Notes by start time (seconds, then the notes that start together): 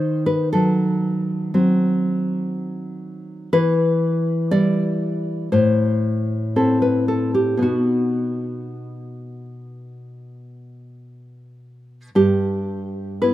Already playing: D#3 C5
0.26 B4
0.53 F#3 A4
1.54 F#3 C4
3.53 E3 B4
4.51 G3 E4 D5
5.52 A2 C5
6.56 C4 E4 A4
6.82 B4
7.08 A4
7.34 G4
7.57 B2 B3 D#4
7.62 F#4
12.15 G2 G4
13.22 B3 E4 B4